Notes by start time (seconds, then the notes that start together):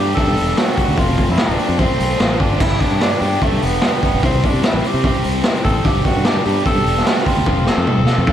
Already playing: G2 B3 D4 G4
0.00 G3
0.15 G2 D3 G3 B3 D4 A4, kick, open hi-hat
0.19 G4
0.27 G2
0.37 E1, open hi-hat
0.55 G3 B3 D4 F#4 G4, snare, open hi-hat
0.68 snare
0.76 G3 B3 D4 F#4 G4, kick, open hi-hat
0.88 D2
0.95 F1 F2 C3 F3 A3 C4 F4, kick, open hi-hat
1.00 F4
1.18 kick, open hi-hat
1.28 F2 E4
1.36 F3 A3 C4 F4, snare, open hi-hat
1.41 D4
1.49 D1
1.56 F3 A3 C4 F4, open hi-hat
1.69 F2
1.76 F2 C3 F3 A3 C4 F4, kick, open hi-hat
2.00 B1, open hi-hat
2.18 A1 F3 A3 C4 F4, snare, open hi-hat
2.31 snare
2.37 G1 F3 A3 C4 D4 F4, kick, open hi-hat
2.57 G2 D3 G3 B3 D4 G4, kick, crash
2.61 G1 E4
2.80 D4, kick, open hi-hat
2.91 G2
2.99 G3 B3 D4 G4, snare, open hi-hat
3.20 G2 G3 B3 D4 G4, open hi-hat
3.40 G2 D3 G3 B3 D4 G4, kick, open hi-hat
3.44 A3
3.52 G2
3.62 E1 B3, open hi-hat
3.81 G3 B3 D4 G4, snare, open hi-hat
4.03 G3 B3 D4 G4, kick, open hi-hat
4.14 G1
4.23 C2 C3 G3 C4 E4 G4 C5, kick, open hi-hat
4.44 D4, kick, open hi-hat
4.53 C3
4.63 C4 E4 G4 C5, snare, open hi-hat
4.74 A1
4.84 C4 E4 G4 C5, open hi-hat
4.94 C3
5.03 C3 G3 C4 E4 G4 C5, kick, open hi-hat
5.24 C2, open hi-hat
5.43 C4 E4 G4 C5, snare, open hi-hat
5.55 snare
5.63 A1 C4 E4 G4 A4 C5, kick, open hi-hat
5.83 G1 G2 D3 G3 B3 D4 G4, kick, open hi-hat
6.05 F#4, kick, open hi-hat
6.16 G2
6.24 G3 B3 D4 G4, snare, open hi-hat
6.45 G2 G3 B3 D4 G4, open hi-hat
6.65 G2 D3 G3 B3 D4 G4 A4, kick, open hi-hat
6.75 G2
6.85 E1, open hi-hat
6.97 snare
7.06 G3 B3 D4 F#4 G4, snare, open hi-hat
7.17 snare
7.26 G3 B3 D4 F4 G4, kick, open hi-hat
7.37 D2
7.46 F1 F2 C3 F3 A3 C4 F4, kick
7.67 A4, snare
7.77 F2
7.87 F3 A3 C4 F4, mid tom
7.98 D1
8.06 F3 A3 C4 F4, snare
8.18 F2
8.26 F2 C3 F3 A3 C4 F4, kick, mid tom